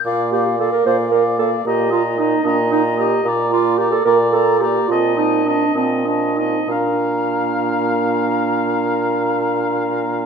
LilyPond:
<<
  \new Staff \with { instrumentName = "Flute" } { \time 6/8 \key bes \major \tempo 4. = 71 f''8 f''8 f''8 f''8 f''8 f''8 | bes''8 bes''8 bes''8 bes''8 bes''8 bes''8 | bes''8 bes''8 bes''8 bes''8 bes''8 bes''8 | a''8 a''8 a''8 a''8 a''8 a''8 |
bes''2.~ | bes''2. | }
  \new Staff \with { instrumentName = "Oboe" } { \time 6/8 \key bes \major d''8 d''8 d''8 d''8 d''8 d''8 | ees''8 ees''8 ees''8 ees''8 ees''8 ees''8 | d''8 d''8 d''8 d''8 d''8 d''8 | ees''8 ees''8 ees''8 ees''8 ees''8 ees''8 |
f''2.~ | f''2. | }
  \new Staff \with { instrumentName = "Clarinet" } { \time 6/8 \key bes \major r8 g'8 a'16 bes'16 c''8 bes'8 a'8 | g'8 f'8 ees'8 d'8 ees'8 g'8 | r8 f'8 g'16 a'16 bes'8 a'8 g'8 | f'8 ees'8 d'8 c'8 d'8 ees'8 |
d'2.~ | d'2. | }
  \new Staff \with { instrumentName = "French horn" } { \time 6/8 \key bes \major bes8 bes8 bes8 bes8 bes8 bes8 | bes8 bes8 bes8 bes8 bes8 bes8 | bes8 bes8 bes8 bes8 bes8 bes8 | c'8 c'8 c'8 c'8 c'8 c'8 |
bes2.~ | bes2. | }
  \new Staff \with { instrumentName = "Bassoon" } { \clef bass \time 6/8 \key bes \major bes,4. bes,4. | bes,4. bes,4. | bes,4. bes,4. | bes,4. bes,4. |
bes,2.~ | bes,2. | }
>>